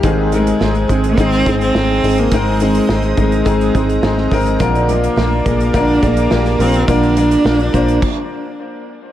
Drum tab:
CC |----------------|----------------|----------------|--------x-------|
HH |x-xx-xxxxxxx--ox|x-xx-xxxxxxx--ox|xxxx--xxx-xx-xox|xxxx-xxx--------|
SD |----o-------o---|----o-------oo--|----o-------oo--|----o-----------|
BD |o-----o-o-o-----|o-----o-o-o---o-|o-----o-o-o-----|o-----o-o-------|